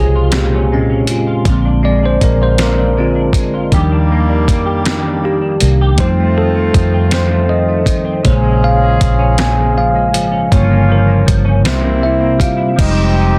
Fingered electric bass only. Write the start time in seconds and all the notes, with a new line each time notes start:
Already playing: C2
1.10 F1
1.46 A#1
2.22 A#1
3.73 D#2
4.49 F2
5.62 C2
5.99 F2
6.75 F2
8.26 A#1
9.02 A#1
10.16 G#1
10.53 G1
11.29 G1
11.66 C2
12.79 F1